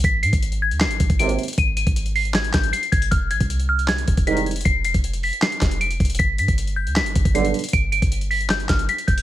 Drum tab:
HH |x---x-x-x-x---x-x-x-x-x-x-x-xxxx|x---x-x-x-x-o-x-x-x-x-x-x-x-x-x-|x---x-x-x-x---x-x-x-x-x-x-x-xxxx|x---x-x-x-x-o-x-x-x-x-x-x-x-xxxx|
CP |----------------x---------------|----------------x---x-----------|----------------x---------------|----------------x---x-----------|
SD |----------------o---------------|----------------o---o-----------|----------------o---------------|----------------o---o-----------|
BD |o-----o-------------o-o---------|o-----o-------------o-------o---|o-----o-------------o-o---------|o-----o-------------o-------o---|

HH |x---x-x-x-x---x-x-x-x-x-x-x-xxxx|x---x-x-x-x-o-x-x-x-x-x-x-x-x-x-|
CP |----------------x---------------|----------------x---x-----------|
SD |----------------o---------------|----------------o---o-----------|
BD |o-----o-------------o-o---------|o-----o-------------o-------o---|